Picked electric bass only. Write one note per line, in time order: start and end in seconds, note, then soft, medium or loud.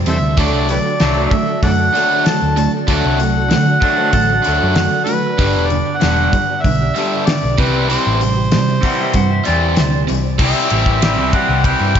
0.06 0.21 E2 medium
0.21 0.36 D2 medium
0.38 0.53 D2 medium
0.53 0.78 C2 medium
1.01 1.26 C2 medium
1.63 1.88 F#2 medium
2.42 2.67 D2 medium
2.88 3.01 D2 medium
3.05 3.54 C2 medium
3.53 3.77 D3 medium
4.14 4.39 A1 medium
4.47 4.59 D2 medium
4.63 4.87 F#2 medium
5.39 5.57 G1 medium
5.57 5.81 E1 medium
6.03 6.27 E1 medium
6.65 6.89 B1 medium
7.44 7.56 B1 medium
7.59 7.96 C2 medium
8.07 8.56 A1 medium
8.54 8.78 C3 medium
9.15 9.40 G2 medium
9.48 9.75 E2 medium
9.78 10.06 D2 medium
10.10 10.38 C2 medium
10.40 10.52 C2 medium
10.71 11.18 A1 medium
11.18 11.30 C2 medium
11.49 11.74 C2 medium
11.80 12.00 G2 medium